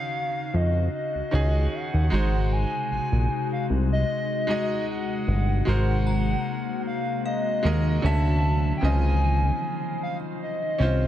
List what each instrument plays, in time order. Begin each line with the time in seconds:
Already playing: ambient pad C#3 D#4 F#4, grand piano D#3 C#4 F#4 F5, soft synth lead F5
0.54 analog synth bass F2, soft synth lead D#5
0.94 soft synth lead D#5
1.15 analog synth bass C#2
1.31 analog synth bass C#2, grand piano D#3 C#4 F#4 G#4
1.74 soft synth lead F#5
1.94 analog synth bass D#2
2.10 analog synth bass G#1, ambient pad C3 G#3 D#4 F#4, grand piano G#3 D#4 F#4 C5
2.52 soft synth lead G#5
2.91 analog synth bass A#1, soft synth lead G#5
3.12 analog synth bass A#1
3.52 soft synth lead F5
3.70 analog synth bass C2
3.92 soft synth lead D#5
4.47 grand piano G#3 D#4 F#4 D#5
4.89 soft synth lead F#5
5.28 analog synth bass G1
5.65 analog synth bass G#1, ambient pad C3 G#3 A#3 F#4, grand piano G#3 F#4 A#4 C5, soft synth lead F#5
6.07 synth bell A#5
6.87 soft synth lead F5
7.26 soft synth lead D#5, synth bell F5
7.63 analog synth bass D#2, grand piano G#3 F#4 A#4 D#5
8.02 analog synth bass D2, grand piano D3 C#4 F#4 E5, ambient pad D3 E3 F#3 C#4, soft synth lead A5
8.77 grand piano C#3, soft synth lead G5
8.82 analog synth bass C#2, ambient pad D#3 F3 D#4 C5, grand piano C4 F4 D#5, soft synth lead G#5
10.03 soft synth lead F5
10.42 soft synth lead D#5
10.78 analog synth bass C2, grand piano C4 C#4 F4 C5